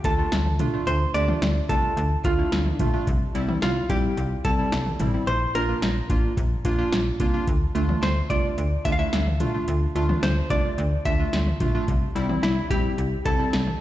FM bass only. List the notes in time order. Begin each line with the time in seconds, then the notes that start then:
0.04 D2
0.32 D2
0.59 C2
0.87 D2
1.14 D2
1.42 D2
1.69 C2
1.97 D2
2.24 D2
2.52 D2
2.80 A#1
3.07 C2
3.35 C2
3.62 C2
3.89 A#1
4.17 C2
4.45 C2
4.72 C2
5.00 A1
5.27 A#1
5.55 A#1
5.82 A#1
6.10 A1
6.37 A#1
6.65 A#1
6.93 A#1
7.20 C2
7.48 D2
7.75 D2
8.03 D2
8.30 C2
8.58 D2
8.85 D2
9.13 D2
9.40 C2
9.68 D2
9.95 D2
10.23 D2
10.50 C2
10.78 D2
11.05 D2
11.33 D2
11.60 A#1
11.88 C2
12.16 C2
12.43 C2
12.70 A#1
12.98 C2
13.25 C2
13.53 C2